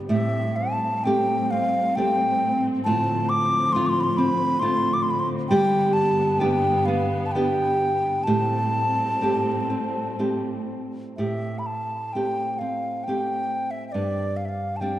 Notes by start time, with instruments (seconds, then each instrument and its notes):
Already playing: nylon-string guitar G3 B3 D4
0.09 nylon-string guitar A2 G4, string section A2 G3 C4, flute E5
0.56 flute A5
1.04 nylon-string guitar A3 C4 G4, flute G5
1.50 nylon-string guitar C4, flute F5
1.96 nylon-string guitar A3 C4 G4, flute G5
2.84 nylon-string guitar A2 F4, string section D3 F3, flute A5
3.29 flute D6
3.73 nylon-string guitar A3 C4 F4, flute C6
3.86 flute C6 D6
4.00 flute B5 C6
4.17 nylon-string guitar C4, flute B5
4.59 nylon-string guitar A3 C4 F4, flute C6
4.93 flute D6
5.02 flute C6
5.10 flute B5
5.19 flute C6
5.49 string section G2 B3, nylon-string guitar G3 G4, flute G5
5.93 flute A5
6.39 nylon-string guitar B3 D4 G4, flute G5
6.85 nylon-string guitar B3, flute F5
7.26 flute A5
7.32 nylon-string guitar B3, flute G5
7.36 nylon-string guitar D4 G4
8.24 string section A2 G3 C4, nylon-string guitar A2, flute A5
8.28 nylon-string guitar G4
9.21 nylon-string guitar A3 C4 G4
9.70 nylon-string guitar C4
10.19 nylon-string guitar A3 C4 G4
11.17 nylon-string guitar A2 G4, flute E5
11.59 flute B5
11.66 flute A5
12.13 nylon-string guitar A3 C4 G4, flute G5
12.59 nylon-string guitar C4, flute F5
13.04 nylon-string guitar C4, flute G5
13.08 nylon-string guitar A3 G4
13.71 flute E5
13.88 flute D5 E5
13.94 nylon-string guitar G2 D4
14.37 flute F5
14.45 flute E5 F5
14.76 flute G5 A5
14.81 nylon-string guitar G3 C4 D4